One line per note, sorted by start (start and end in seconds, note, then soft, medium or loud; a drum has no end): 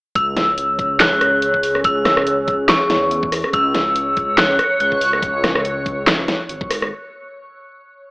0.15 1.20 C#2 loud
0.15 5.19 C#4 medium
0.15 5.19 G#4 medium
0.15 5.19 C#5 loud
0.15 1.03 E6 loud
0.15 kick loud
0.15 closed hi-hat medium
0.37 snare medium
0.37 closed hi-hat medium
0.58 closed hi-hat medium
0.79 kick loud
0.79 closed hi-hat medium
1.00 1.59 F#6 loud
1.00 snare loud
1.00 clap medium
1.00 closed hi-hat medium
1.21 2.68 C#2 medium
1.21 cross-stick medium
1.21 closed hi-hat medium
1.42 closed hi-hat medium
1.54 kick medium
1.63 open hi-hat medium
1.75 cross-stick medium
1.84 2.72 E6 loud
1.84 kick loud
1.84 closed hi-hat medium
2.05 cross-stick medium
2.05 snare medium
2.05 closed hi-hat medium
2.17 cross-stick medium
2.27 closed hi-hat medium
2.48 kick loud
2.48 closed hi-hat medium
2.69 3.29 C#6 loud
2.69 snare loud
2.69 clap loud
2.69 closed hi-hat medium
2.90 3.42 E2 loud
2.90 snare medium
2.90 closed hi-hat medium
3.11 closed hi-hat medium
3.23 kick loud
3.32 cross-stick medium
3.32 open hi-hat medium
3.44 cross-stick medium
3.53 4.58 C#2 loud
3.53 5.23 C#5 medium
3.53 4.34 E6 loud
3.53 kick loud
3.53 closed hi-hat medium
3.75 snare medium
3.75 closed hi-hat medium
3.96 closed hi-hat medium
4.17 kick loud
4.17 closed hi-hat medium
4.38 4.79 F#6 loud
4.38 snare loud
4.38 clap loud
4.38 closed hi-hat medium
4.59 cross-stick medium
4.59 closed hi-hat medium
4.80 5.21 C#2 loud
4.80 5.20 F#6 medium
4.80 closed hi-hat medium
4.92 kick medium
5.01 open hi-hat medium
5.13 cross-stick medium
5.22 6.27 C#2 loud
5.22 kick loud
5.22 closed hi-hat medium
5.44 cross-stick medium
5.44 snare medium
5.44 closed hi-hat medium
5.55 cross-stick medium
5.65 closed hi-hat medium
5.86 kick loud
5.86 closed hi-hat soft
6.07 snare loud
6.07 clap medium
6.07 closed hi-hat medium
6.28 snare medium
6.28 closed hi-hat medium
6.49 6.90 G#1 medium
6.49 closed hi-hat medium
6.61 kick loud
6.71 cross-stick medium
6.71 open hi-hat medium
6.82 cross-stick medium